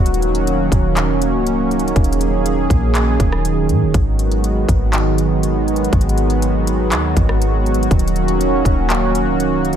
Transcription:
Already playing: 808-style bass D#1, analog synth pad D#3 F#3 A#3 C#4 F#4
0.06 closed hi-hat
0.14 closed hi-hat
0.22 closed hi-hat
0.35 closed hi-hat
0.47 closed hi-hat
0.72 808-style bass D#1, kick, closed hi-hat
0.97 clap, closed hi-hat
1.22 closed hi-hat
1.34 808-style bass C#1
1.47 closed hi-hat
1.71 closed hi-hat
1.79 closed hi-hat
1.88 closed hi-hat
1.96 808-style bass D#1, analog synth pad G#4, kick, closed hi-hat
2.04 closed hi-hat
2.13 closed hi-hat
2.21 closed hi-hat
2.46 closed hi-hat
2.70 808-style bass A#1, kick, closed hi-hat
2.95 clap, closed hi-hat
3.20 808-style bass D#1, kick, closed hi-hat
3.32 cross-stick
3.45 closed hi-hat
3.69 808-style bass A#2, closed hi-hat
3.82 808-style bass D#1
3.94 808-style bass G#1, analog synth pad F#3 G#3 B3 F#4, kick, closed hi-hat
4.19 closed hi-hat
4.32 closed hi-hat
4.44 closed hi-hat
4.69 808-style bass G#1, kick, closed hi-hat
4.93 clap, closed hi-hat
5.18 closed hi-hat
5.43 closed hi-hat
5.68 closed hi-hat
5.76 closed hi-hat
5.84 closed hi-hat
5.93 808-style bass G#1, kick, closed hi-hat
6.01 closed hi-hat
6.09 closed hi-hat
6.18 closed hi-hat
6.30 closed hi-hat
6.42 closed hi-hat
6.67 closed hi-hat
6.92 808-style bass D#2, clap, closed hi-hat
7.17 808-style bass G#1, kick, closed hi-hat
7.29 cross-stick
7.42 closed hi-hat
7.66 closed hi-hat
7.74 closed hi-hat
7.83 closed hi-hat
7.91 808-style bass D#1, analog synth pad A#3 C#4, kick, closed hi-hat
7.99 closed hi-hat
8.08 closed hi-hat
8.16 closed hi-hat
8.28 closed hi-hat
8.41 closed hi-hat
8.65 808-style bass D#1, kick, closed hi-hat
8.90 clap, closed hi-hat
9.15 closed hi-hat
9.27 808-style bass C#1
9.40 closed hi-hat
9.65 closed hi-hat
9.73 closed hi-hat

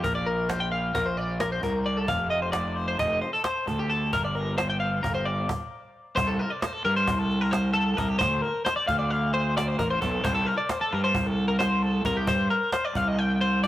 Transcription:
0.04 fingered electric bass A#1, clean electric guitar A#4, cajon bass
0.15 clean electric guitar D5
0.26 clean electric guitar A#4, cajon slap
0.49 clean electric guitar C5, cajon slap
0.60 clean electric guitar G5
0.72 clean electric guitar F5, cajon slap
0.95 fingered electric bass A#1, clean electric guitar A#4, cajon bass
1.06 clean electric guitar C5
1.17 clean electric guitar D5, cajon slap
1.40 clean electric guitar A#4, cajon slap
1.52 clean electric guitar C5
1.63 fingered electric bass C2, clean electric guitar A#4, cajon bass
1.86 clean electric guitar D5, cajon slap
1.97 clean electric guitar A4
2.08 fingered electric bass F1, clean electric guitar F5, cajon bass
2.30 clean electric guitar D#5, cajon slap
2.42 clean electric guitar C5
2.52 clean electric guitar D5, cajon slap
2.76 clean electric guitar C5, cajon slap
2.88 clean electric guitar C5
2.99 fingered electric bass F1, clean electric guitar D#5, cajon bass
3.22 clean electric guitar C5, cajon slap
3.33 clean electric guitar A4
3.44 clean electric guitar C5, cajon slap
3.67 fingered electric bass D2, clean electric guitar A4, cajon bass
3.79 clean electric guitar G4
3.90 clean electric guitar A4, cajon slap
4.13 fingered electric bass G1, clean electric guitar A#4, cajon bass
4.25 clean electric guitar D5
4.35 clean electric guitar A#4, cajon slap
4.58 clean electric guitar C5, cajon slap
4.70 clean electric guitar G5
4.80 clean electric guitar F5, cajon slap
5.03 fingered electric bass G1, clean electric guitar A#4, cajon bass
5.15 clean electric guitar C5
5.26 clean electric guitar D5, cajon slap
5.49 cajon bass, cajon slap
6.16 fingered electric bass C2, clean electric guitar C5, cajon bass
6.27 clean electric guitar A4
6.39 clean electric guitar A#4, cajon slap
6.50 clean electric guitar D5
6.61 clean electric guitar C5, cajon slap
6.73 clean electric guitar A4
6.85 fingered electric bass G2, clean electric guitar A#4, cajon slap
6.96 clean electric guitar C5
7.07 fingered electric bass C2, cajon bass
7.19 clean electric guitar A4
7.31 cajon slap
7.41 clean electric guitar A#4
7.51 clean electric guitar C5, cajon slap
7.74 clean electric guitar A4, cajon slap
7.97 fingered electric bass C2, clean electric guitar A#4, cajon bass
8.09 clean electric guitar G4
8.19 fingered electric bass D2, clean electric guitar C5, cajon bass
8.42 clean electric guitar A#4, cajon slap
8.65 clean electric guitar C5, cajon slap
8.76 clean electric guitar D5
8.88 fingered electric bass D2, clean electric guitar F5, cajon bass
8.99 clean electric guitar D5
9.11 clean electric guitar F5, cajon slap
9.34 clean electric guitar C5, cajon slap
9.57 clean electric guitar D5, cajon slap
9.68 clean electric guitar C5
9.79 fingered electric bass A1, clean electric guitar A#4, cajon bass, cajon slap
9.90 clean electric guitar C5
10.01 fingered electric bass B1, clean electric guitar A4, cajon bass
10.24 fingered electric bass C2, clean electric guitar C5, cajon bass
10.35 clean electric guitar A4
10.46 clean electric guitar A#4, cajon slap
10.58 clean electric guitar D5
10.69 clean electric guitar C5, cajon slap
10.81 clean electric guitar A4
10.93 fingered electric bass G2, clean electric guitar A#4, cajon slap
11.04 clean electric guitar C5
11.14 fingered electric bass C2, cajon bass
11.27 clean electric guitar A4
11.38 cajon slap
11.48 clean electric guitar A#4
11.59 clean electric guitar C5, cajon slap
11.82 clean electric guitar A4, cajon slap
12.04 fingered electric bass C2, clean electric guitar A#4, cajon bass
12.17 clean electric guitar G4
12.27 fingered electric bass G2, clean electric guitar C5, cajon bass
12.49 clean electric guitar A#4, cajon slap
12.72 clean electric guitar C5, cajon slap
12.85 clean electric guitar D5
12.95 fingered electric bass C2, clean electric guitar F5, cajon bass
13.08 clean electric guitar D#5
13.18 clean electric guitar G5, cajon slap
13.41 clean electric guitar C5, cajon slap
13.64 clean electric guitar D5, cajon slap

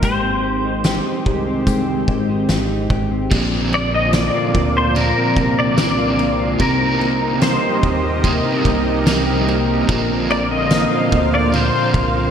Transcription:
Already playing: clean electric guitar D#3 A#3 D#4
0.02 analog synth bass G#1, analog synth pad D#3 G#3 C4 G4, clean electric guitar G#3 G4, pedal steel guitar C5, kick, closed hi-hat
0.23 clean electric guitar C4
0.44 clean electric guitar G4
0.64 clean electric guitar D#4
0.84 clean electric guitar G4, snare, closed hi-hat
1.06 clean electric guitar D#4
1.26 analog synth bass C2, clean electric guitar G4, kick
1.47 clean electric guitar C4
1.67 clean electric guitar G#3 G4, kick, closed hi-hat
1.88 clean electric guitar C4
2.08 analog synth bass G#1, clean electric guitar G4, kick
2.29 clean electric guitar D#4
2.49 analog synth bass G#1, clean electric guitar G4, snare, closed hi-hat
2.70 clean electric guitar D#4
2.90 analog synth bass G#1, clean electric guitar G4, kick
3.11 clean electric guitar C4
3.30 analog synth bass A#1, overdriven electric guitar A#2 D3 F3 C4, clean electric guitar A#2, analog synth pad C4 F4 A#4 D5, kick, crash
3.35 overdriven electric guitar D4
3.52 clean electric guitar C4
3.73 clean electric guitar A#3, pedal steel guitar D5, ride
3.93 clean electric guitar C4, pedal steel guitar D#5
4.13 clean electric guitar A#3, pedal steel guitar D5, snare, ride, tambourine
4.34 clean electric guitar F4
4.54 analog synth bass D2, clean electric guitar A#3, kick, ride
4.76 clean electric guitar F4, pedal steel guitar C5
4.95 clean electric guitar A#2, overdriven electric guitar D3 F3 C4 D4, pedal steel guitar A#4, ride
5.16 clean electric guitar C4
5.37 analog synth bass C2, clean electric guitar A#3, kick, ride
5.58 clean electric guitar C4, pedal steel guitar D5
5.77 overdriven electric guitar D3 F3 C4 D4, clean electric guitar A#3, pedal steel guitar D5, snare, ride, tambourine
5.98 clean electric guitar F4
6.19 clean electric guitar A#3, ride
6.39 clean electric guitar F4
6.59 analog synth bass C2, overdriven electric guitar C3 G3 A#3, clean electric guitar C3, analog synth pad G4 D#5, pedal steel guitar A#4, kick, ride
6.64 overdriven electric guitar D#4
6.80 clean electric guitar D#4
7.01 clean electric guitar A#3, ride
7.21 clean electric guitar D#4
7.42 clean electric guitar A#3, pedal steel guitar C5, snare, ride, tambourine
7.62 clean electric guitar G4
7.83 analog synth bass D#2, clean electric guitar A#3, kick, ride
8.03 clean electric guitar G4
8.23 overdriven electric guitar C3 G3 A#3 D#4, clean electric guitar C3, kick, ride
8.45 clean electric guitar D#4
8.65 analog synth bass C2, clean electric guitar A#3, kick, ride
8.86 clean electric guitar D#4
9.05 overdriven electric guitar C3 G3 A#3 D#4, clean electric guitar A#3, snare, ride, tambourine
9.27 clean electric guitar G4
9.47 clean electric guitar A#3, ride
9.68 clean electric guitar G4
9.87 analog synth bass A#1, overdriven electric guitar A#2 D3 F3 C4, clean electric guitar A#2, analog synth pad D3 C5 F5, kick, ride
10.09 clean electric guitar C4
10.29 clean electric guitar A#3, pedal steel guitar D5, ride
10.50 clean electric guitar C4, pedal steel guitar D#5
10.71 clean electric guitar A#3, snare, ride, tambourine
10.91 clean electric guitar F4
11.12 analog synth bass D2, clean electric guitar A#3, kick, ride
11.33 clean electric guitar F4, pedal steel guitar D5
11.52 clean electric guitar A#2, overdriven electric guitar D3 F3 C4 D4, pedal steel guitar C5, ride
11.74 clean electric guitar C4
11.94 analog synth bass C2, clean electric guitar A#3, kick, ride
12.15 clean electric guitar C4

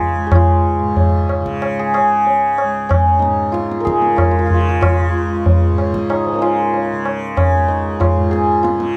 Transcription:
Already playing: tanpura C#2 G#2 C#3, santur C#4 D#4 F4 G#4
0.00 tabla ge
0.16 tanpura C#2
0.27 santur G#4
0.32 santur F4, tabla na, tabla ge
0.79 tanpura G#2
0.97 tabla tin, tabla ge
1.29 tabla na
1.41 tanpura C#3
1.46 tabla ke
1.62 tabla na
1.79 santur G#4
1.94 santur G#4, tabla na
2.02 tanpura C#3
2.27 tabla tin
2.58 tabla na
2.63 tanpura C#2
2.89 santur C#4, tabla na, tabla ge
3.19 santur D#4, tabla te
3.24 tanpura G#2
3.52 santur F4, tabla te
3.72 tabla te
3.80 santur A#4
3.85 tanpura C#3, santur G#4, tabla ke
4.02 tabla te
4.16 santur F4, tabla na, tabla ge
4.24 santur F4
4.31 santur F4
4.39 santur F4
4.46 tanpura C#3, santur F4
4.50 santur F4, tabla ge
4.60 santur F4
4.69 santur F4
4.81 santur F4, tabla na, tabla ge
5.09 tanpura C#2
5.46 tabla tin, tabla ge
5.70 tanpura G#2
5.78 tabla na
5.94 tabla ke
6.09 santur D#4, tabla na
6.25 santur F3 G#3
6.32 tanpura C#3, santur A#3 C#4
6.39 santur D#4 F4, tabla na
6.74 tabla tin
6.93 tanpura C#3
7.05 tabla na
7.37 santur C#4, tabla na, tabla ge
7.53 tanpura C#2
7.68 santur D#4
8.00 santur F4, tabla na, tabla ge
8.16 tanpura G#2
8.31 santur G#4, tabla te
8.63 santur F4, tabla te
8.76 tanpura C#3, tabla te

